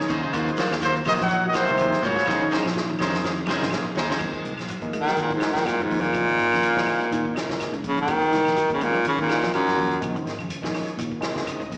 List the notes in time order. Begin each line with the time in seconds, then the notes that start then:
Already playing: C#3 C#5
0.00 D#3, snare
0.08 D#2 C#4 D#4 G#4 C5, kick, closed hi-hat, low conga, shekere
0.22 C#3 D#4 G#4 C5, muted fingered electric bass stroke, kick, shekere
0.33 D#2 D#3 A#3 D#4 F4 F#4 G#4 C5, kick, closed hi-hat, claves, shekere
0.46 closed hi-hat, shekere
0.56 F#3 A#3 F4 F#4 C5, muted fingered electric bass stroke, snare, closed hi-hat, high conga, shekere
0.70 D#2, snare, closed hi-hat, claves, shekere
0.81 C3 D#3 A#3 F4 F#4 C5, closed hi-hat, high conga, shekere
0.87 C5
0.94 closed hi-hat, shekere
1.05 A#1 F#3 A#3 D#4 F4 F#4 G#4 C5 D#5, open hi-hat, low conga, claves, shekere
1.10 D#3 D#5
1.18 A#1 F3, kick, snare, closed hi-hat, high conga, shekere
1.23 F#3 F#5
1.27 closed hi-hat, shekere
1.41 shekere
1.45 D#3 F#3 D#5
1.49 D#5, shekere
1.54 A#3 F4 F#4 C5, kick, snare, closed hi-hat, high conga, claves
1.59 C3 C5
1.67 C2 D#3 A#3 D#4 G#4 C5, closed hi-hat, low conga, shekere
1.78 D#2, closed hi-hat, high conga, claves, shekere
1.82 D#3
1.92 snare, closed hi-hat, high conga, shekere
2.02 G#2 F#3 A#3 F4 F#4 C5 C#5, kick, open hi-hat, low conga, shekere
2.06 C#3 C#5
2.16 F4 F#4 C5, muted fingered electric bass stroke, kick, snare, shekere
2.26 A#1 D#3 A#3 C#4 D#4 G#4 C5, kick, snare, high conga, claves, shekere
2.40 D#3, shekere
2.51 C#4 D#4 G#4 C5, muted fingered electric bass stroke, snare, high conga, shekere
2.63 A#1 F3, snare, claves, shekere
2.74 snare, shekere
2.89 D#3, shekere
2.98 F2 A#3 C#4 D#4 G#4 C5, muted clean electric guitar stroke, snare, low conga, claves, shekere
3.02 C5
3.12 F2, snare, high conga, shekere
3.24 D#3, snare, shekere
3.37 shekere
3.46 C3 C#4 D#4 G#4 C5 G#5, snare, high conga, claves, shekere
3.59 G#1 C#3 A#3 D#4 G#4 C5, snare, shekere
3.71 A#1 F5, snare, high conga, claves, shekere
3.85 shekere
3.95 D#2 D#4 G#4 C5 C#5, muted clean electric guitar stroke, snare, low conga, shekere
4.09 C#3 D#4 G#4 C5, muted fingered electric bass stroke, snare, shekere
4.19 D#2 A#2 D#3 F#3 G#3 C4, kick, crash, claves, shekere
4.34 kick, closed hi-hat
4.45 C2, closed hi-hat, shekere
4.58 A#1, snare, closed hi-hat, claves
4.68 F#3, muted fingered electric bass stroke, closed hi-hat, shekere
4.81 D#2 A#2 D#3 G#3 A#3, kick, closed hi-hat
4.93 G#3, closed hi-hat, claves, shekere
5.01 D#3
5.06 F#3, muted fingered electric bass stroke, snare, closed hi-hat
5.16 D#3, closed hi-hat, shekere
5.21 A#2
5.30 D#3, kick, closed hi-hat
5.35 G#2
5.40 A#2 D#3 G#3 A#3, snare, closed hi-hat, claves, shekere
5.53 D#3, kick, snare, closed hi-hat
5.57 F3
5.66 A#2 F#3, snare, closed hi-hat, claves, shekere
5.79 F#2, closed hi-hat
5.83 G#2
5.90 D#2 F3, kick, open hi-hat, shekere
6.00 A#2, closed hi-hat
6.13 A#1 A#2 C#3 D#3 G#3 C4, kick, closed hi-hat, claves, shekere
6.28 D#3, kick, closed hi-hat
6.39 G#1, closed hi-hat, shekere
6.52 F2 C#3, snare, closed hi-hat, claves
6.63 muted fingered electric bass stroke, closed hi-hat, shekere
6.75 A#1 A#2 D#3 G#3 C4, kick, snare
6.86 muted clean electric guitar stroke, open hi-hat, claves, shekere
7.01 muted fingered electric bass stroke, closed hi-hat
7.11 A#2 D#3, closed hi-hat, shekere
7.25 kick
7.34 A#2 C3 D#3 G#3 A#3, snare, closed hi-hat, claves, shekere
7.49 C#3, kick, snare, closed hi-hat
7.60 snare, closed hi-hat, claves, shekere
7.72 C#2 C#3, closed hi-hat
7.83 A#1, kick, closed hi-hat, shekere
7.88 C#3
7.97 D#3, closed hi-hat
8.01 D#3
8.07 D#2 A#2 D#3 F#3 G#3 C4, kick, closed hi-hat, claves, shekere
8.21 kick, closed hi-hat
8.32 C2 D#3, snare, closed hi-hat, shekere
8.45 A#1, snare, closed hi-hat, claves
8.56 F#3, muted fingered electric bass stroke, closed hi-hat, shekere
8.69 D#2 A#2 D#3 G#3 C4, kick, closed hi-hat
8.74 C#3
8.80 A#2 G#3, closed hi-hat, claves, shekere
8.94 F#3, muted fingered electric bass stroke, closed hi-hat
9.05 C#3 D#3, closed hi-hat, shekere
9.18 A#2 D#3, kick, closed hi-hat
9.29 A#2 D#3 G#3 C4, snare, closed hi-hat, claves, shekere
9.42 F3, kick, snare, closed hi-hat
9.54 F#2 F#3, closed hi-hat, claves, shekere
9.67 F#2, snare, closed hi-hat
9.77 D#2 F3, kick, open hi-hat, shekere
9.91 closed hi-hat
10.00 A#1 A#2 C#3 D#3 G#3 C4, kick, closed hi-hat, claves, shekere
10.15 D#3, kick, closed hi-hat
10.25 G#1, snare, closed hi-hat, shekere
10.39 F2 C#3, closed hi-hat, claves
10.50 muted fingered electric bass stroke, closed hi-hat, shekere
10.62 A#1 A#2 D#3 G#3 C#4, kick, snare
10.74 F3, snare, open hi-hat, claves, shekere
10.88 muted fingered electric bass stroke, closed hi-hat
10.97 A#2 D#3, closed hi-hat, shekere
11.12 kick
11.20 A#2 C3 D#3 G#3 C4, snare, closed hi-hat, claves, shekere
11.36 C#3, kick, snare, closed hi-hat
11.46 D#5, closed hi-hat, claves, shekere
11.60 C#2 C#3, closed hi-hat
11.71 A#1, kick, closed hi-hat, shekere